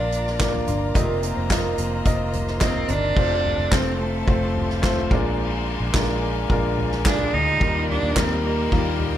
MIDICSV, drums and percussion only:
0, 0, Header, 1, 2, 480
1, 0, Start_track
1, 0, Tempo, 555042
1, 822, Time_signature, 4, 2, 24, 8
1, 7935, End_track
2, 0, Start_track
2, 0, Title_t, "Drums"
2, 106, Note_on_c, 9, 42, 73
2, 193, Note_off_c, 9, 42, 0
2, 231, Note_on_c, 9, 38, 35
2, 317, Note_off_c, 9, 38, 0
2, 344, Note_on_c, 9, 42, 88
2, 346, Note_on_c, 9, 36, 108
2, 347, Note_on_c, 9, 38, 102
2, 351, Note_on_c, 9, 39, 78
2, 431, Note_off_c, 9, 42, 0
2, 432, Note_off_c, 9, 36, 0
2, 434, Note_off_c, 9, 38, 0
2, 438, Note_off_c, 9, 39, 0
2, 464, Note_on_c, 9, 43, 74
2, 551, Note_off_c, 9, 43, 0
2, 583, Note_on_c, 9, 42, 66
2, 585, Note_on_c, 9, 43, 64
2, 670, Note_off_c, 9, 42, 0
2, 672, Note_off_c, 9, 43, 0
2, 824, Note_on_c, 9, 36, 119
2, 824, Note_on_c, 9, 42, 95
2, 910, Note_off_c, 9, 36, 0
2, 911, Note_off_c, 9, 42, 0
2, 1062, Note_on_c, 9, 42, 65
2, 1149, Note_off_c, 9, 42, 0
2, 1299, Note_on_c, 9, 36, 100
2, 1302, Note_on_c, 9, 38, 97
2, 1305, Note_on_c, 9, 42, 95
2, 1306, Note_on_c, 9, 39, 76
2, 1385, Note_off_c, 9, 36, 0
2, 1389, Note_off_c, 9, 38, 0
2, 1392, Note_off_c, 9, 42, 0
2, 1393, Note_off_c, 9, 39, 0
2, 1539, Note_on_c, 9, 42, 65
2, 1625, Note_off_c, 9, 42, 0
2, 1776, Note_on_c, 9, 42, 87
2, 1778, Note_on_c, 9, 36, 112
2, 1862, Note_off_c, 9, 42, 0
2, 1865, Note_off_c, 9, 36, 0
2, 2018, Note_on_c, 9, 42, 72
2, 2020, Note_on_c, 9, 43, 64
2, 2104, Note_off_c, 9, 42, 0
2, 2107, Note_off_c, 9, 43, 0
2, 2138, Note_on_c, 9, 38, 37
2, 2224, Note_off_c, 9, 38, 0
2, 2252, Note_on_c, 9, 42, 95
2, 2255, Note_on_c, 9, 38, 95
2, 2259, Note_on_c, 9, 36, 107
2, 2259, Note_on_c, 9, 39, 77
2, 2338, Note_off_c, 9, 42, 0
2, 2341, Note_off_c, 9, 38, 0
2, 2346, Note_off_c, 9, 36, 0
2, 2346, Note_off_c, 9, 39, 0
2, 2375, Note_on_c, 9, 43, 67
2, 2461, Note_off_c, 9, 43, 0
2, 2495, Note_on_c, 9, 42, 72
2, 2497, Note_on_c, 9, 43, 61
2, 2582, Note_off_c, 9, 42, 0
2, 2583, Note_off_c, 9, 43, 0
2, 2735, Note_on_c, 9, 49, 109
2, 2738, Note_on_c, 9, 36, 125
2, 2821, Note_off_c, 9, 49, 0
2, 2824, Note_off_c, 9, 36, 0
2, 2975, Note_on_c, 9, 43, 59
2, 2976, Note_on_c, 9, 51, 53
2, 3062, Note_off_c, 9, 43, 0
2, 3062, Note_off_c, 9, 51, 0
2, 3216, Note_on_c, 9, 36, 117
2, 3218, Note_on_c, 9, 38, 111
2, 3221, Note_on_c, 9, 51, 86
2, 3222, Note_on_c, 9, 39, 78
2, 3302, Note_off_c, 9, 36, 0
2, 3304, Note_off_c, 9, 38, 0
2, 3308, Note_off_c, 9, 51, 0
2, 3309, Note_off_c, 9, 39, 0
2, 3459, Note_on_c, 9, 51, 59
2, 3546, Note_off_c, 9, 51, 0
2, 3695, Note_on_c, 9, 51, 78
2, 3698, Note_on_c, 9, 36, 118
2, 3781, Note_off_c, 9, 51, 0
2, 3784, Note_off_c, 9, 36, 0
2, 3939, Note_on_c, 9, 51, 66
2, 3941, Note_on_c, 9, 43, 69
2, 4025, Note_off_c, 9, 51, 0
2, 4027, Note_off_c, 9, 43, 0
2, 4062, Note_on_c, 9, 38, 36
2, 4148, Note_off_c, 9, 38, 0
2, 4178, Note_on_c, 9, 51, 81
2, 4181, Note_on_c, 9, 36, 113
2, 4181, Note_on_c, 9, 38, 105
2, 4185, Note_on_c, 9, 39, 81
2, 4264, Note_off_c, 9, 51, 0
2, 4267, Note_off_c, 9, 38, 0
2, 4268, Note_off_c, 9, 36, 0
2, 4272, Note_off_c, 9, 39, 0
2, 4297, Note_on_c, 9, 43, 71
2, 4383, Note_off_c, 9, 43, 0
2, 4419, Note_on_c, 9, 57, 74
2, 4420, Note_on_c, 9, 36, 109
2, 4421, Note_on_c, 9, 43, 59
2, 4506, Note_off_c, 9, 36, 0
2, 4506, Note_off_c, 9, 57, 0
2, 4507, Note_off_c, 9, 43, 0
2, 4660, Note_on_c, 9, 51, 83
2, 4747, Note_off_c, 9, 51, 0
2, 4901, Note_on_c, 9, 51, 55
2, 4987, Note_off_c, 9, 51, 0
2, 5138, Note_on_c, 9, 36, 117
2, 5139, Note_on_c, 9, 38, 107
2, 5142, Note_on_c, 9, 51, 82
2, 5143, Note_on_c, 9, 39, 82
2, 5224, Note_off_c, 9, 36, 0
2, 5226, Note_off_c, 9, 38, 0
2, 5229, Note_off_c, 9, 51, 0
2, 5230, Note_off_c, 9, 39, 0
2, 5379, Note_on_c, 9, 51, 56
2, 5465, Note_off_c, 9, 51, 0
2, 5617, Note_on_c, 9, 51, 71
2, 5620, Note_on_c, 9, 36, 121
2, 5703, Note_off_c, 9, 51, 0
2, 5706, Note_off_c, 9, 36, 0
2, 5860, Note_on_c, 9, 51, 61
2, 5862, Note_on_c, 9, 43, 70
2, 5946, Note_off_c, 9, 51, 0
2, 5949, Note_off_c, 9, 43, 0
2, 5980, Note_on_c, 9, 38, 37
2, 6066, Note_off_c, 9, 38, 0
2, 6097, Note_on_c, 9, 51, 82
2, 6100, Note_on_c, 9, 38, 106
2, 6102, Note_on_c, 9, 36, 126
2, 6104, Note_on_c, 9, 39, 85
2, 6184, Note_off_c, 9, 51, 0
2, 6187, Note_off_c, 9, 38, 0
2, 6189, Note_off_c, 9, 36, 0
2, 6191, Note_off_c, 9, 39, 0
2, 6217, Note_on_c, 9, 43, 68
2, 6304, Note_off_c, 9, 43, 0
2, 6338, Note_on_c, 9, 51, 58
2, 6339, Note_on_c, 9, 43, 67
2, 6424, Note_off_c, 9, 51, 0
2, 6426, Note_off_c, 9, 43, 0
2, 6580, Note_on_c, 9, 51, 77
2, 6582, Note_on_c, 9, 36, 126
2, 6666, Note_off_c, 9, 51, 0
2, 6668, Note_off_c, 9, 36, 0
2, 6820, Note_on_c, 9, 43, 65
2, 6821, Note_on_c, 9, 51, 56
2, 6906, Note_off_c, 9, 43, 0
2, 6907, Note_off_c, 9, 51, 0
2, 7059, Note_on_c, 9, 36, 109
2, 7060, Note_on_c, 9, 38, 111
2, 7064, Note_on_c, 9, 51, 84
2, 7065, Note_on_c, 9, 39, 90
2, 7146, Note_off_c, 9, 36, 0
2, 7147, Note_off_c, 9, 38, 0
2, 7150, Note_off_c, 9, 51, 0
2, 7151, Note_off_c, 9, 39, 0
2, 7306, Note_on_c, 9, 51, 59
2, 7393, Note_off_c, 9, 51, 0
2, 7541, Note_on_c, 9, 51, 73
2, 7542, Note_on_c, 9, 36, 116
2, 7628, Note_off_c, 9, 36, 0
2, 7628, Note_off_c, 9, 51, 0
2, 7779, Note_on_c, 9, 51, 68
2, 7781, Note_on_c, 9, 43, 71
2, 7865, Note_off_c, 9, 51, 0
2, 7867, Note_off_c, 9, 43, 0
2, 7935, End_track
0, 0, End_of_file